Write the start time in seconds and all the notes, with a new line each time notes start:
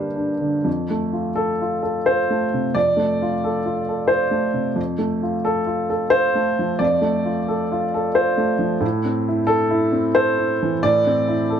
Already playing: G2 D3 A#3 D4 G4 A#4 C5
0.16 D4
0.41 D3
0.64 F2
0.90 A3
1.13 F4
1.35 A4
1.61 F4
1.83 A4
2.06 F4 C5
2.30 A3
2.54 C3
2.75 F2 D5
2.97 A3
3.22 F4
3.44 A4
3.65 F4
3.89 A4
4.08 F4 C5
4.31 A3
4.54 C3
4.76 F2
4.99 A3
5.23 F4
5.45 A4
5.67 F4
5.90 A4
6.10 F4 C5
6.35 A3
6.59 F3
6.79 F2 D5
7.02 A3
7.25 F4
7.48 A4
7.72 F4
7.94 A4
8.15 F4 C5
8.37 A3
8.59 F3
8.81 A2
9.05 C4
9.28 E4
9.47 A4
9.71 E4
9.92 C4
10.15 A4 C5
10.37 E4
10.63 E3
10.83 A2 D5
11.06 C4
11.28 E4
11.50 A4